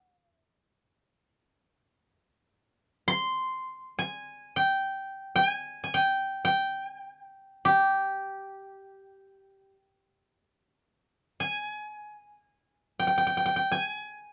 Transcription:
Already playing: F#5
0.09 F5
0.33 E5
0.57 D#5
3.08 C6
3.99 G#5
4.56 G5
5.36 G5
5.47 G#5
5.84 G#5
5.94 G5
6.45 G5
7.65 G4
11.40 G#5
12.99 G5
13.07 G5
13.18 G5
13.27 G5
13.37 G5
13.46 G5
13.56 G5
13.72 G#5

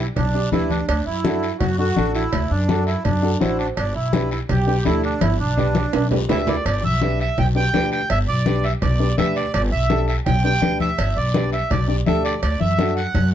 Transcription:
0.16 B1 D4, cowbell, high conga, low conga, long guiro
0.34 D4 G4 D5
0.52 D2 D4 E4 G4 B4, high conga, low conga, short guiro
0.70 D4, high conga, short guiro
0.88 D2 D4, cowbell, high conga, long guiro
1.06 F#2 E4
1.24 D4 F#4 A4, high conga, short guiro
1.43 short guiro
1.59 F#2 F#4, cowbell, high conga, low conga, long guiro
1.78 D4 F#4 A4
1.96 A1 D4 F#4 A4, high conga, short guiro
2.14 E4, short guiro
2.33 D2, cowbell, high conga, low conga, long guiro
2.50 F#2 D4
2.68 D4 F#4 A4, high conga, short guiro
2.86 E4, short guiro
3.04 F#2 D4, cowbell, high conga, low conga, long guiro
3.22 D4 F#4 A4
3.40 A1 D4 E4 F#4 C5, high conga, short guiro
3.59 D4, short guiro
3.77 G1 D4, cowbell, high conga, long guiro
3.95 B1 E4
4.13 D4 G4 B4, high conga, short guiro
4.31 E4, short guiro
4.49 B1 G4, cowbell, high conga, low conga, long guiro
4.67 D4 G4 B4
4.85 D2 D4 E4 G4 A4, high conga, short guiro
5.04 D4, short guiro
5.21 G1 E4, cowbell, high conga, long guiro
5.39 B1 D4
5.57 D4 G4 B4, low conga, short guiro
5.75 high conga, short guiro
5.93 B1, cowbell, high timbale, long guiro
6.11 D4 G4 B4, low conga, low timbale
6.29 D2 D4 E4 G4 B4 E5, low conga, low timbale, short guiro
6.47 E4 D5, low conga, low timbale, short guiro
6.65 G1 D5, cowbell, high conga, long guiro
6.83 B1 E5, high conga
7.02 D4 G4 B4, high conga, short guiro
7.20 E5, short guiro
7.38 B1 G5, cowbell, high conga, low conga, long guiro
7.55 D4 G4 B4 G5
7.74 D2 D4 G4 B4, high conga, low timbale, short guiro
7.92 G5, short guiro
8.10 G1 E5, cowbell, high conga, long guiro
8.28 B1 D5
8.46 D4 G4 B4, high conga, short guiro
8.64 E5, short guiro
8.82 B1 D5, cowbell, high conga, low conga, long guiro
8.99 D4 G4 B4
9.18 D2 D4 G4 B4 E5, high conga, low conga, short guiro
9.36 D5, short guiro
9.54 G1 D5, cowbell, high conga, long guiro
9.72 B1 E5
9.90 D4 G4 A4, high conga, short guiro
10.08 E5, short guiro
10.26 B1 G5, cowbell, high conga, low conga, long guiro
10.44 D4 G4 B4 G5
10.62 D2 D4 G4 B4, high conga, short guiro
10.80 E5, high conga, short guiro
10.98 G1, cowbell, high conga, long guiro
11.17 B1 D5
11.34 D4 G4 B4, high conga, short guiro
11.52 E5, short guiro
11.70 B1 D5, cowbell, high conga, low conga, long guiro
11.88 D4 G4 D5
12.06 D2 D4 G4 A4 E5, high conga, short guiro
12.25 D5, short guiro
12.42 D2 D5, cowbell, high conga, long guiro
12.60 F#2 E5, high conga
12.79 D4 F#4 A4, high conga, short guiro
12.96 F#5, short guiro
13.15 F#2, cowbell, high conga, low conga, long guiro

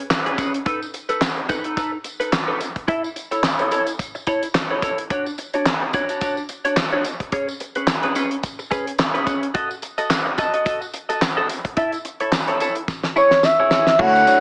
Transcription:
0.10 muted clean electric guitar stroke, snare, clap, tambourine
0.26 C#4 G#4 B4, closed hi-hat
0.38 C#4 G#4 B4, kick, closed hi-hat, tambourine
0.54 muted clean electric guitar stroke, closed hi-hat
0.66 D#4 A4 B4, kick, closed hi-hat
0.81 muted clean electric guitar stroke, tambourine
0.94 muted clean electric guitar stroke, closed hi-hat, tambourine
1.09 D#4 A4 B4, closed hi-hat, tambourine
1.21 snare, clap, tambourine
1.37 muted clean electric guitar stroke
1.49 D#4 A4 B4, kick, closed hi-hat, tambourine
1.64 D#4 A4 B4, closed hi-hat
1.76 D#4 A4 B4, kick, closed hi-hat, tambourine
1.92 muted clean electric guitar stroke
2.04 muted clean electric guitar stroke, closed hi-hat, tambourine
2.20 D#4 A4 B4, closed hi-hat, tambourine
2.32 muted clean electric guitar stroke, snare, clap, tambourine
2.48 D#4 A4 B4
2.60 muted clean electric guitar stroke, closed hi-hat, tambourine
2.76 muted clean electric guitar stroke, kick, closed hi-hat
2.88 E4 A4 E5, kick, closed hi-hat
3.04 muted clean electric guitar stroke, tambourine
3.16 muted clean electric guitar stroke, closed hi-hat, tambourine
3.31 E4 A4 C#5, closed hi-hat, tambourine
3.43 snare, clap, tambourine
3.59 E4 A4 C#5, closed hi-hat
3.71 E4 A4 C#5, closed hi-hat, tambourine
3.87 muted clean electric guitar stroke, closed hi-hat, tambourine
3.99 kick, closed hi-hat, tambourine
4.15 muted clean electric guitar stroke, tambourine
4.27 E4 A4 C#5, kick, closed hi-hat, tambourine
4.43 muted clean electric guitar stroke, closed hi-hat, tambourine
4.54 muted clean electric guitar stroke, snare, clap, tambourine
4.70 E4 A4 C#5
4.82 E4 A4 C#5, kick, closed hi-hat, tambourine
4.98 muted clean electric guitar stroke, closed hi-hat
5.10 D4 F#4 C#5, kick, closed hi-hat
5.26 muted clean electric guitar stroke, tambourine
5.38 muted clean electric guitar stroke, closed hi-hat, tambourine
5.54 D4 F#4 C#5, closed hi-hat
5.66 muted clean electric guitar stroke, snare, clap, tambourine
5.82 muted clean electric guitar stroke
5.93 D4 F#4 C#5, kick, closed hi-hat, tambourine
6.09 D4 F#4 C#5, closed hi-hat, tambourine
6.21 D4 F#4 C#5, kick, closed hi-hat, tambourine
6.37 muted clean electric guitar stroke, tambourine
6.49 muted clean electric guitar stroke, closed hi-hat, tambourine
6.65 D4 F#4 C#5, closed hi-hat
6.76 muted clean electric guitar stroke, snare, clap, tambourine
6.92 D4 F#4 C#5
7.04 muted clean electric guitar stroke, closed hi-hat, tambourine
7.20 muted clean electric guitar stroke, kick, closed hi-hat
7.32 C#4 G#4 C#5, kick, closed hi-hat
7.48 muted clean electric guitar stroke, tambourine
7.60 muted clean electric guitar stroke, closed hi-hat, tambourine
7.75 C#4 G#4 B4, closed hi-hat
7.87 muted clean electric guitar stroke, snare, clap, tambourine
8.03 C#4 G#4 B4, closed hi-hat
8.15 C#4 G#4 B4, closed hi-hat, tambourine
8.31 muted clean electric guitar stroke, closed hi-hat
8.43 kick, closed hi-hat, tambourine
8.59 muted clean electric guitar stroke, tambourine
8.71 C#4 G#4 B4, kick, closed hi-hat, tambourine
8.87 muted clean electric guitar stroke, closed hi-hat
8.98 muted clean electric guitar stroke, snare, clap, tambourine
9.14 C#4 G#4 B4, closed hi-hat
9.26 C#4 G#4 B4, kick, closed hi-hat, tambourine
9.42 muted clean electric guitar stroke, closed hi-hat
9.54 F#4 A4 D#5, kick, closed hi-hat
9.70 muted clean electric guitar stroke, tambourine
9.82 muted clean electric guitar stroke, closed hi-hat, tambourine
9.98 F#4 A4 D#5, closed hi-hat, tambourine
10.10 muted clean electric guitar stroke, snare, clap, tambourine
10.26 muted clean electric guitar stroke
10.38 F#4 A4 D#5, kick, closed hi-hat, tambourine
10.54 F#4 A4 D#5, closed hi-hat
10.65 F#4 A4 D#5, kick, closed hi-hat, tambourine
10.81 muted clean electric guitar stroke, tambourine
10.94 muted clean electric guitar stroke, closed hi-hat, tambourine
11.09 F#4 A4 D#5, closed hi-hat, tambourine
11.22 muted clean electric guitar stroke, snare, clap, tambourine
11.37 F#4 A4 D#5
11.49 muted clean electric guitar stroke, closed hi-hat, tambourine
11.65 muted clean electric guitar stroke, kick, closed hi-hat
11.77 E4 A4 E5, kick, closed hi-hat
11.92 muted clean electric guitar stroke, closed hi-hat, tambourine
12.05 muted clean electric guitar stroke, closed hi-hat, tambourine
12.20 E4 A4 C#5, closed hi-hat
12.32 muted clean electric guitar stroke, snare, clap, tambourine
12.48 E4 A4 C#5, closed hi-hat
12.60 E4 A4 C#5, closed hi-hat, tambourine
12.75 muted clean electric guitar stroke, closed hi-hat
12.88 kick, snare, tambourine
13.03 muted clean electric guitar stroke, snare, tambourine
13.16 E4 G#4 C#5, tambourine
13.31 muted clean electric guitar stroke, snare, tambourine
13.43 E5, muted clean electric guitar stroke, snare, tambourine
13.60 E4 G#4 C#5
13.71 E4 G#4 C#5, snare, tambourine
13.87 muted clean electric guitar stroke, snare
13.99 D2 D4 E4 F#4 A4 C#5 F#5, kick, crash
14.15 muted clean electric guitar stroke, tambourine
14.27 D4 F#4 C#5, closed hi-hat, tambourine

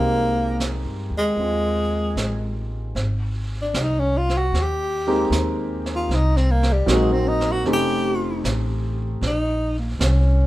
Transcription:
Already playing: C2 G#3 A#3 C4 D#4 F4 G4
0.60 snare, hi-hat pedal
0.85 G2
1.10 D#2
1.17 G#3
1.37 D#2 G#3 C4, brush sweep
1.41 F4
2.16 A1, snare, hi-hat pedal
2.95 G#1, brush sweep, snare
3.62 D4
3.74 C2, snare, hi-hat pedal
3.82 D#4
3.99 C#4
4.17 F4
4.29 snare
4.37 F#4
4.52 D#2, brush sweep, snare
4.62 G4
5.07 G#3 A#3 C4 D#4 G4
5.30 D#2, snare, hi-hat pedal
5.86 snare
5.95 F4
6.09 C2, brush sweep, snare
6.14 D#4
6.37 C4, snare
6.51 A#3
6.63 snare
6.73 G3
6.86 A#1 F#3 A#3 C4 D#4 F#4, snare, hi-hat pedal
6.93 G#3
7.12 C4
7.28 D#4
7.41 snare
7.52 F#4
7.65 F1 A3 C4 C#4 D#4 G4, brush sweep, snare
7.73 G4
8.44 A1, snare, hi-hat pedal
9.21 A#1, brush sweep, snare
9.27 D#4
9.79 A#3
9.99 C2, snare, hi-hat pedal
10.06 C#4

